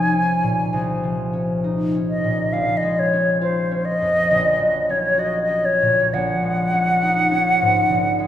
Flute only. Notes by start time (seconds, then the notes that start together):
Already playing: G#5
2.09 D#5
2.53 F5
2.77 D#5
2.99 C#5
3.42 C5
3.85 D#5
4.91 C#5
5.19 D#5
5.43 D#5
5.65 C#5
6.14 F#5